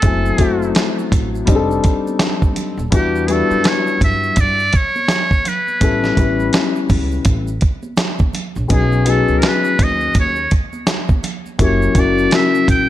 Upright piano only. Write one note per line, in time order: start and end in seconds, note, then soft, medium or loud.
0.02 0.35 F#3 medium
0.02 0.35 A3 medium
0.02 0.36 C4 medium
0.02 0.36 E4 medium
0.02 0.37 G#5 medium
0.38 1.47 F#3 medium
0.38 1.47 A3 medium
0.38 1.45 C4 medium
0.38 1.48 E4 medium
0.38 1.48 F#4 medium
1.45 2.76 G3 medium
1.45 2.77 C4 medium
1.45 2.77 D4 medium
1.45 2.77 D#4 medium
1.45 1.56 G4 medium
1.55 2.81 A4 loud
2.90 3.24 G3 medium
2.90 3.24 B3 medium
2.90 3.24 D4 medium
2.90 3.25 E4 medium
2.90 3.25 F#4 medium
3.27 4.57 G3 medium
3.27 4.58 B3 medium
3.27 4.58 D4 medium
3.27 4.58 E4 medium
3.27 4.59 F#4 medium
5.80 6.13 G3 medium
5.80 6.13 B3 medium
5.80 6.14 C#4 medium
5.80 6.14 E4 medium
5.80 6.15 A4 medium
6.16 7.46 G3 medium
6.16 7.47 B3 medium
6.16 7.47 C#4 medium
6.16 7.48 E4 medium
6.16 7.48 B4 medium
8.68 9.02 F#3 medium
8.68 9.02 B3 medium
8.68 9.02 C#4 medium
8.68 9.03 D#4 medium
8.68 9.03 G#4 medium
9.05 10.35 F#3 medium
9.05 10.35 B3 medium
9.05 10.36 C#4 medium
9.05 10.36 D#4 medium
9.05 10.37 G#4 medium
11.58 11.91 F#3 medium
11.58 11.92 A#3 medium
11.58 11.92 C#4 medium
11.58 11.93 E4 medium
11.58 11.93 G4 medium
11.95 12.89 C#3 medium
11.95 12.89 F#3 medium
11.95 12.89 A#3 medium
11.95 12.89 E4 medium
11.95 12.89 F#4 medium